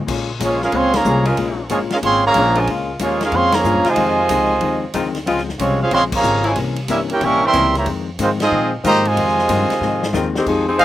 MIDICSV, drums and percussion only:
0, 0, Header, 1, 2, 480
1, 0, Start_track
1, 0, Key_signature, -4, "minor"
1, 0, Tempo, 324500
1, 118, Time_signature, 4, 2, 24, 8
1, 16046, End_track
2, 0, Start_track
2, 0, Title_t, "Drums"
2, 121, Note_on_c, 9, 36, 86
2, 123, Note_on_c, 9, 49, 96
2, 269, Note_off_c, 9, 36, 0
2, 271, Note_off_c, 9, 49, 0
2, 598, Note_on_c, 9, 36, 24
2, 598, Note_on_c, 9, 44, 64
2, 598, Note_on_c, 9, 51, 82
2, 746, Note_off_c, 9, 36, 0
2, 746, Note_off_c, 9, 44, 0
2, 746, Note_off_c, 9, 51, 0
2, 916, Note_on_c, 9, 38, 48
2, 1064, Note_off_c, 9, 38, 0
2, 1067, Note_on_c, 9, 51, 67
2, 1078, Note_on_c, 9, 36, 28
2, 1215, Note_off_c, 9, 51, 0
2, 1226, Note_off_c, 9, 36, 0
2, 1384, Note_on_c, 9, 51, 77
2, 1387, Note_on_c, 9, 38, 102
2, 1532, Note_off_c, 9, 51, 0
2, 1535, Note_off_c, 9, 38, 0
2, 1547, Note_on_c, 9, 44, 64
2, 1695, Note_off_c, 9, 44, 0
2, 1855, Note_on_c, 9, 51, 60
2, 2003, Note_off_c, 9, 51, 0
2, 2028, Note_on_c, 9, 51, 69
2, 2037, Note_on_c, 9, 36, 24
2, 2176, Note_off_c, 9, 51, 0
2, 2184, Note_off_c, 9, 36, 0
2, 2507, Note_on_c, 9, 44, 65
2, 2507, Note_on_c, 9, 51, 81
2, 2517, Note_on_c, 9, 36, 23
2, 2655, Note_off_c, 9, 44, 0
2, 2655, Note_off_c, 9, 51, 0
2, 2664, Note_off_c, 9, 36, 0
2, 2817, Note_on_c, 9, 51, 58
2, 2820, Note_on_c, 9, 38, 76
2, 2965, Note_off_c, 9, 51, 0
2, 2968, Note_off_c, 9, 38, 0
2, 2999, Note_on_c, 9, 36, 24
2, 3000, Note_on_c, 9, 51, 81
2, 3147, Note_off_c, 9, 36, 0
2, 3147, Note_off_c, 9, 51, 0
2, 3461, Note_on_c, 9, 44, 54
2, 3461, Note_on_c, 9, 51, 88
2, 3475, Note_on_c, 9, 36, 23
2, 3609, Note_off_c, 9, 44, 0
2, 3609, Note_off_c, 9, 51, 0
2, 3623, Note_off_c, 9, 36, 0
2, 3778, Note_on_c, 9, 51, 59
2, 3926, Note_off_c, 9, 51, 0
2, 3955, Note_on_c, 9, 36, 27
2, 3955, Note_on_c, 9, 51, 66
2, 4103, Note_off_c, 9, 36, 0
2, 4103, Note_off_c, 9, 51, 0
2, 4429, Note_on_c, 9, 44, 73
2, 4429, Note_on_c, 9, 51, 92
2, 4434, Note_on_c, 9, 36, 24
2, 4577, Note_off_c, 9, 44, 0
2, 4577, Note_off_c, 9, 51, 0
2, 4582, Note_off_c, 9, 36, 0
2, 4743, Note_on_c, 9, 51, 61
2, 4746, Note_on_c, 9, 38, 79
2, 4891, Note_off_c, 9, 51, 0
2, 4894, Note_off_c, 9, 38, 0
2, 4909, Note_on_c, 9, 51, 64
2, 4912, Note_on_c, 9, 36, 26
2, 5057, Note_off_c, 9, 51, 0
2, 5060, Note_off_c, 9, 36, 0
2, 5210, Note_on_c, 9, 51, 77
2, 5213, Note_on_c, 9, 38, 116
2, 5358, Note_off_c, 9, 51, 0
2, 5361, Note_off_c, 9, 38, 0
2, 5383, Note_on_c, 9, 44, 57
2, 5530, Note_off_c, 9, 44, 0
2, 5688, Note_on_c, 9, 51, 56
2, 5691, Note_on_c, 9, 38, 56
2, 5836, Note_off_c, 9, 51, 0
2, 5839, Note_off_c, 9, 38, 0
2, 5855, Note_on_c, 9, 51, 77
2, 5867, Note_on_c, 9, 36, 26
2, 6003, Note_off_c, 9, 51, 0
2, 6015, Note_off_c, 9, 36, 0
2, 6346, Note_on_c, 9, 44, 75
2, 6346, Note_on_c, 9, 51, 95
2, 6350, Note_on_c, 9, 36, 25
2, 6494, Note_off_c, 9, 44, 0
2, 6494, Note_off_c, 9, 51, 0
2, 6498, Note_off_c, 9, 36, 0
2, 6814, Note_on_c, 9, 51, 66
2, 6829, Note_on_c, 9, 36, 25
2, 6962, Note_off_c, 9, 51, 0
2, 6977, Note_off_c, 9, 36, 0
2, 7301, Note_on_c, 9, 44, 57
2, 7301, Note_on_c, 9, 51, 82
2, 7311, Note_on_c, 9, 36, 24
2, 7449, Note_off_c, 9, 44, 0
2, 7449, Note_off_c, 9, 51, 0
2, 7459, Note_off_c, 9, 36, 0
2, 7612, Note_on_c, 9, 51, 52
2, 7615, Note_on_c, 9, 38, 49
2, 7760, Note_off_c, 9, 51, 0
2, 7763, Note_off_c, 9, 38, 0
2, 7793, Note_on_c, 9, 36, 28
2, 7795, Note_on_c, 9, 51, 70
2, 7941, Note_off_c, 9, 36, 0
2, 7943, Note_off_c, 9, 51, 0
2, 7954, Note_on_c, 9, 38, 33
2, 8102, Note_off_c, 9, 38, 0
2, 8121, Note_on_c, 9, 38, 51
2, 8268, Note_off_c, 9, 38, 0
2, 8273, Note_on_c, 9, 36, 26
2, 8275, Note_on_c, 9, 44, 68
2, 8275, Note_on_c, 9, 51, 82
2, 8421, Note_off_c, 9, 36, 0
2, 8423, Note_off_c, 9, 44, 0
2, 8423, Note_off_c, 9, 51, 0
2, 8743, Note_on_c, 9, 51, 70
2, 8749, Note_on_c, 9, 36, 23
2, 8891, Note_off_c, 9, 51, 0
2, 8897, Note_off_c, 9, 36, 0
2, 9055, Note_on_c, 9, 49, 106
2, 9056, Note_on_c, 9, 36, 105
2, 9203, Note_off_c, 9, 49, 0
2, 9204, Note_off_c, 9, 36, 0
2, 9220, Note_on_c, 9, 44, 62
2, 9368, Note_off_c, 9, 44, 0
2, 9525, Note_on_c, 9, 51, 52
2, 9673, Note_off_c, 9, 51, 0
2, 9697, Note_on_c, 9, 51, 76
2, 9704, Note_on_c, 9, 36, 26
2, 9845, Note_off_c, 9, 51, 0
2, 9852, Note_off_c, 9, 36, 0
2, 10004, Note_on_c, 9, 51, 62
2, 10152, Note_off_c, 9, 51, 0
2, 10179, Note_on_c, 9, 44, 61
2, 10179, Note_on_c, 9, 51, 87
2, 10183, Note_on_c, 9, 36, 26
2, 10327, Note_off_c, 9, 44, 0
2, 10327, Note_off_c, 9, 51, 0
2, 10331, Note_off_c, 9, 36, 0
2, 10496, Note_on_c, 9, 51, 60
2, 10644, Note_off_c, 9, 51, 0
2, 10663, Note_on_c, 9, 51, 67
2, 10665, Note_on_c, 9, 36, 20
2, 10811, Note_off_c, 9, 51, 0
2, 10813, Note_off_c, 9, 36, 0
2, 11145, Note_on_c, 9, 44, 59
2, 11145, Note_on_c, 9, 51, 78
2, 11147, Note_on_c, 9, 36, 26
2, 11293, Note_off_c, 9, 44, 0
2, 11293, Note_off_c, 9, 51, 0
2, 11295, Note_off_c, 9, 36, 0
2, 11467, Note_on_c, 9, 51, 56
2, 11470, Note_on_c, 9, 38, 42
2, 11615, Note_off_c, 9, 51, 0
2, 11618, Note_off_c, 9, 38, 0
2, 11624, Note_on_c, 9, 51, 72
2, 11631, Note_on_c, 9, 36, 24
2, 11772, Note_off_c, 9, 51, 0
2, 11779, Note_off_c, 9, 36, 0
2, 12111, Note_on_c, 9, 44, 71
2, 12111, Note_on_c, 9, 51, 94
2, 12114, Note_on_c, 9, 36, 31
2, 12259, Note_off_c, 9, 44, 0
2, 12259, Note_off_c, 9, 51, 0
2, 12262, Note_off_c, 9, 36, 0
2, 12425, Note_on_c, 9, 51, 72
2, 12428, Note_on_c, 9, 38, 93
2, 12573, Note_off_c, 9, 51, 0
2, 12576, Note_off_c, 9, 38, 0
2, 13081, Note_on_c, 9, 36, 19
2, 13083, Note_on_c, 9, 44, 72
2, 13083, Note_on_c, 9, 51, 71
2, 13229, Note_off_c, 9, 36, 0
2, 13231, Note_off_c, 9, 44, 0
2, 13231, Note_off_c, 9, 51, 0
2, 13391, Note_on_c, 9, 51, 59
2, 13539, Note_off_c, 9, 51, 0
2, 13562, Note_on_c, 9, 36, 23
2, 13564, Note_on_c, 9, 51, 77
2, 13710, Note_off_c, 9, 36, 0
2, 13712, Note_off_c, 9, 51, 0
2, 13724, Note_on_c, 9, 38, 32
2, 13872, Note_off_c, 9, 38, 0
2, 13882, Note_on_c, 9, 38, 55
2, 14029, Note_off_c, 9, 38, 0
2, 14036, Note_on_c, 9, 44, 73
2, 14036, Note_on_c, 9, 51, 90
2, 14041, Note_on_c, 9, 36, 29
2, 14183, Note_off_c, 9, 44, 0
2, 14183, Note_off_c, 9, 51, 0
2, 14189, Note_off_c, 9, 36, 0
2, 14350, Note_on_c, 9, 51, 59
2, 14353, Note_on_c, 9, 38, 58
2, 14498, Note_off_c, 9, 51, 0
2, 14501, Note_off_c, 9, 38, 0
2, 14526, Note_on_c, 9, 38, 54
2, 14674, Note_off_c, 9, 38, 0
2, 14836, Note_on_c, 9, 38, 98
2, 14984, Note_off_c, 9, 38, 0
2, 14997, Note_on_c, 9, 44, 63
2, 15000, Note_on_c, 9, 38, 78
2, 15145, Note_off_c, 9, 44, 0
2, 15148, Note_off_c, 9, 38, 0
2, 15315, Note_on_c, 9, 38, 103
2, 15463, Note_off_c, 9, 38, 0
2, 15479, Note_on_c, 9, 36, 67
2, 15479, Note_on_c, 9, 49, 71
2, 15627, Note_off_c, 9, 36, 0
2, 15627, Note_off_c, 9, 49, 0
2, 15960, Note_on_c, 9, 36, 26
2, 15963, Note_on_c, 9, 44, 60
2, 15963, Note_on_c, 9, 51, 70
2, 16046, Note_off_c, 9, 36, 0
2, 16046, Note_off_c, 9, 44, 0
2, 16046, Note_off_c, 9, 51, 0
2, 16046, End_track
0, 0, End_of_file